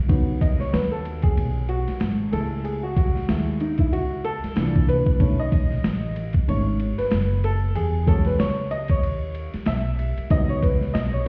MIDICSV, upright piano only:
0, 0, Header, 1, 2, 480
1, 0, Start_track
1, 0, Tempo, 638298
1, 71, Time_signature, 4, 2, 24, 8
1, 8483, End_track
2, 0, Start_track
2, 0, Title_t, "Upright piano"
2, 0, Program_c, 0, 0
2, 65, Note_on_c, 0, 54, 55
2, 68, Note_on_c, 0, 59, 54
2, 74, Note_on_c, 0, 63, 58
2, 311, Note_on_c, 0, 75, 76
2, 440, Note_off_c, 0, 75, 0
2, 449, Note_on_c, 0, 73, 85
2, 548, Note_on_c, 0, 71, 85
2, 554, Note_off_c, 0, 73, 0
2, 687, Note_on_c, 0, 69, 75
2, 693, Note_off_c, 0, 71, 0
2, 911, Note_off_c, 0, 69, 0
2, 925, Note_on_c, 0, 68, 82
2, 1245, Note_off_c, 0, 68, 0
2, 1270, Note_on_c, 0, 66, 82
2, 1718, Note_off_c, 0, 54, 0
2, 1720, Note_off_c, 0, 59, 0
2, 1720, Note_off_c, 0, 66, 0
2, 1722, Note_off_c, 0, 63, 0
2, 1739, Note_on_c, 0, 68, 50
2, 1744, Note_on_c, 0, 57, 52
2, 1747, Note_on_c, 0, 64, 59
2, 1748, Note_on_c, 0, 69, 82
2, 1972, Note_off_c, 0, 69, 0
2, 1975, Note_off_c, 0, 68, 0
2, 1986, Note_on_c, 0, 68, 82
2, 2081, Note_off_c, 0, 57, 0
2, 2083, Note_off_c, 0, 64, 0
2, 2117, Note_off_c, 0, 68, 0
2, 2129, Note_on_c, 0, 66, 80
2, 2222, Note_off_c, 0, 66, 0
2, 2234, Note_on_c, 0, 66, 85
2, 2468, Note_on_c, 0, 56, 51
2, 2469, Note_on_c, 0, 57, 47
2, 2473, Note_on_c, 0, 64, 54
2, 2685, Note_off_c, 0, 56, 0
2, 2686, Note_off_c, 0, 57, 0
2, 2688, Note_off_c, 0, 64, 0
2, 2714, Note_on_c, 0, 63, 77
2, 2727, Note_off_c, 0, 66, 0
2, 2852, Note_on_c, 0, 64, 80
2, 2855, Note_off_c, 0, 63, 0
2, 2952, Note_on_c, 0, 66, 83
2, 2955, Note_off_c, 0, 64, 0
2, 3191, Note_on_c, 0, 69, 101
2, 3199, Note_off_c, 0, 66, 0
2, 3427, Note_on_c, 0, 52, 55
2, 3432, Note_on_c, 0, 46, 56
2, 3435, Note_on_c, 0, 62, 62
2, 3641, Note_off_c, 0, 69, 0
2, 3673, Note_on_c, 0, 71, 110
2, 3885, Note_off_c, 0, 52, 0
2, 3887, Note_off_c, 0, 46, 0
2, 3889, Note_off_c, 0, 62, 0
2, 3907, Note_on_c, 0, 51, 57
2, 3913, Note_on_c, 0, 57, 53
2, 3915, Note_on_c, 0, 61, 59
2, 4057, Note_on_c, 0, 75, 97
2, 4062, Note_off_c, 0, 71, 0
2, 4599, Note_off_c, 0, 51, 0
2, 4602, Note_off_c, 0, 57, 0
2, 4603, Note_off_c, 0, 61, 0
2, 4743, Note_off_c, 0, 75, 0
2, 4870, Note_on_c, 0, 51, 48
2, 4872, Note_on_c, 0, 57, 42
2, 4876, Note_on_c, 0, 61, 52
2, 4876, Note_on_c, 0, 73, 90
2, 5086, Note_off_c, 0, 51, 0
2, 5088, Note_off_c, 0, 57, 0
2, 5090, Note_off_c, 0, 61, 0
2, 5250, Note_on_c, 0, 71, 95
2, 5264, Note_off_c, 0, 73, 0
2, 5596, Note_on_c, 0, 69, 93
2, 5602, Note_off_c, 0, 71, 0
2, 5831, Note_on_c, 0, 68, 94
2, 5841, Note_off_c, 0, 69, 0
2, 6063, Note_on_c, 0, 54, 50
2, 6070, Note_on_c, 0, 56, 49
2, 6072, Note_on_c, 0, 69, 86
2, 6075, Note_on_c, 0, 61, 52
2, 6078, Note_off_c, 0, 68, 0
2, 6213, Note_on_c, 0, 71, 91
2, 6214, Note_off_c, 0, 69, 0
2, 6310, Note_on_c, 0, 73, 102
2, 6316, Note_off_c, 0, 71, 0
2, 6400, Note_off_c, 0, 54, 0
2, 6404, Note_off_c, 0, 56, 0
2, 6406, Note_off_c, 0, 61, 0
2, 6549, Note_on_c, 0, 75, 104
2, 6558, Note_off_c, 0, 73, 0
2, 6693, Note_off_c, 0, 75, 0
2, 6693, Note_on_c, 0, 73, 96
2, 7141, Note_off_c, 0, 73, 0
2, 7274, Note_on_c, 0, 76, 108
2, 7746, Note_on_c, 0, 54, 57
2, 7749, Note_on_c, 0, 59, 53
2, 7753, Note_on_c, 0, 75, 112
2, 7754, Note_on_c, 0, 63, 57
2, 7767, Note_off_c, 0, 76, 0
2, 7889, Note_on_c, 0, 73, 95
2, 7895, Note_off_c, 0, 75, 0
2, 7992, Note_on_c, 0, 71, 84
2, 7994, Note_off_c, 0, 73, 0
2, 8225, Note_on_c, 0, 75, 103
2, 8239, Note_off_c, 0, 71, 0
2, 8369, Note_on_c, 0, 73, 89
2, 8371, Note_off_c, 0, 75, 0
2, 8438, Note_off_c, 0, 54, 0
2, 8440, Note_off_c, 0, 59, 0
2, 8442, Note_off_c, 0, 63, 0
2, 8474, Note_off_c, 0, 73, 0
2, 8483, End_track
0, 0, End_of_file